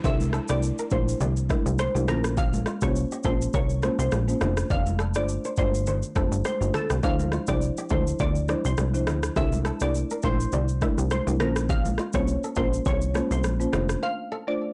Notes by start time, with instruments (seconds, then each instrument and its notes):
Already playing: downlifter
0.04 analog synth bass C2, marimba D4 E4 A4 A#4, kora C5, synth pluck E5, kick, low conga, shaker
0.20 high conga, shaker
0.33 kora A4, cross-stick, shaker
0.48 analog synth bass C2, marimba A3 D4 E4 A#4, synth pluck D5, cross-stick, shaker
0.63 shaker
0.79 kora A#4, shaker
0.91 analog synth bass A#1, marimba A3 D4 E4 A#4, kora C5, synth pluck C5, kick, high conga, shaker
1.08 shaker
1.21 analog synth bass C2, kora D5, low conga, shaker
1.37 shaker
1.49 marimba A3 D4 E4 A#4, kora E5, kick, cross-stick, high conga, shaker
1.66 analog synth bass C2, shaker
1.79 kora C5, synth pluck C5, cross-stick, high conga, shaker
1.95 analog synth bass C2, marimba A3 D4 E4 A#4, shaker
2.08 analog synth bass A#1, marimba A#3 C#4 F4 C5, kora A#4, synth pluck A#4, cross-stick, high conga, low conga, shaker
2.24 cross-stick, shaker
2.37 kora G4, synth pluck F5, kick, low conga, shaker
2.53 high conga, shaker
2.66 kora F4, cross-stick, shaker
2.81 analog synth bass C2, marimba A#3 C#4 F4 C5, synth pluck C#5, kick, cross-stick, shaker
2.96 shaker
3.12 kora G4, shaker
3.24 analog synth bass A#1, marimba A#3 C#4 F4 C5, kora A4, synth pluck C5, kick, high conga, shaker
3.42 shaker
3.54 analog synth bass C2, kora A#4, synth pluck C#5, kick, low conga, shaker
3.70 shaker
3.82 marimba A#3 C#4 F4 C5, kora C5, cross-stick, high conga, shaker
3.99 analog synth bass C2, synth pluck C5, shaker
4.12 analog synth bass A#1, cross-stick, high conga, shaker
4.28 marimba A#3 C#4 F4 C5, shaker
4.41 analog synth bass F1, marimba A3 D4 F4 C5, kora F5, cross-stick, high conga, low conga, shaker
4.57 cross-stick, shaker
4.70 analog synth bass F1, kora D5, synth pluck F5, kick, low conga, shaker
4.86 high conga, shaker
4.99 kora A4, cross-stick, shaker
5.14 analog synth bass G1, marimba A3 D4 F4 C5, synth pluck D5, cross-stick, shaker
5.29 shaker
5.45 kora C5, shaker
5.57 analog synth bass G1, marimba A3 D4 F4 C5, synth pluck C5, kora D5, kick, high conga, shaker
5.74 shaker
5.87 kora C5, low conga, shaker
6.03 shaker
6.15 analog synth bass F1, marimba A3 D4 F4 C5, kora A4, kick, cross-stick, high conga, shaker
6.32 analog synth bass G1, shaker
6.45 kora G4, synth pluck C5, cross-stick, high conga, shaker
6.61 analog synth bass G1, marimba A3 D4 F4 C5, shaker
6.74 synth pluck A4, kora A4, cross-stick, high conga, low conga, shaker
6.90 analog synth bass C2, cross-stick, shaker
7.03 analog synth bass D2, marimba F3 D4 E4 C5, kora G4, synth pluck F5, kick, low conga, shaker
7.19 high conga, shaker
7.32 kora F4, cross-stick, shaker
7.47 analog synth bass C2, marimba F3 D4 E4 C5, synth pluck D5, kick, cross-stick, shaker
7.62 shaker
7.77 kora G4, shaker
7.89 analog synth bass D2, marimba F3 D4 E4 C5, kora A4, synth pluck C5, kick, high conga, shaker
8.07 shaker
8.19 analog synth bass D2, kora C5, synth pluck D5, kick, low conga, shaker
8.35 shaker
8.48 marimba F3 D4 E4 C5, kora D5, cross-stick, high conga, shaker
8.65 analog synth bass C2, synth pluck C5, shaker
8.78 analog synth bass C2, cross-stick, high conga, shaker
8.94 marimba F3 D4 E4 C5, shaker
9.07 analog synth bass D2, kora F5, cross-stick, high conga, low conga, shaker
9.23 cross-stick, shaker
9.36 analog synth bass C2, marimba D4 E4 A4 A#4, kora C5, synth pluck E5, kick, low conga, shaker
9.52 high conga, shaker
9.65 kora A4, cross-stick, shaker
9.80 analog synth bass C2, marimba A3 D4 E4 A#4, synth pluck D5, cross-stick, shaker
9.95 shaker
10.11 kora A#4, shaker
10.23 analog synth bass A#1, marimba A3 D4 E4 A#4, kora C5, synth pluck C5, kick, high conga, shaker
10.40 shaker
10.52 analog synth bass C2, kora D5, low conga, shaker
10.68 shaker
10.81 marimba A3 D4 E4 A#4, kora E5, kick, cross-stick, high conga, shaker
10.98 analog synth bass C2, shaker
11.11 synth pluck C5, kora C5, cross-stick, high conga, shaker
11.27 analog synth bass C2, marimba A3 D4 E4 A#4, shaker
11.40 analog synth bass A#1, marimba A#3 C#4 F4 C5, synth pluck A#4, kora A#4, cross-stick, high conga, low conga, shaker
11.56 cross-stick, shaker
11.69 kora G4, synth pluck F5, kick, low conga, shaker
11.85 high conga, shaker
11.98 kora F4, cross-stick, shaker
12.13 analog synth bass C2, marimba A#3 C#4 F4 C5, synth pluck C#5, kick, cross-stick, shaker
12.28 shaker
12.44 kora A4, shaker
12.56 analog synth bass A#1, marimba A#3 C#4 F4 C5, kora A#4, synth pluck C5, kick, high conga, shaker
12.73 shaker
12.86 analog synth bass C2, kora C5, synth pluck C#5, kick, low conga, shaker
13.02 shaker
13.14 marimba A#3 C#4 F4 C5, kora C#5, cross-stick, high conga, shaker
13.31 analog synth bass C2, synth pluck C5, shaker
13.44 analog synth bass A#1, cross-stick, high conga, shaker
13.60 marimba A#3 C#4 F4 C5, shaker
13.73 analog synth bass F1, marimba A3 D4 F4 C5, kora F5, cross-stick, high conga, low conga, shaker
13.89 cross-stick, shaker
14.03 kora C5, synth pluck F5
14.32 kora A4
14.47 marimba A3 D4 F4 C5, synth pluck D5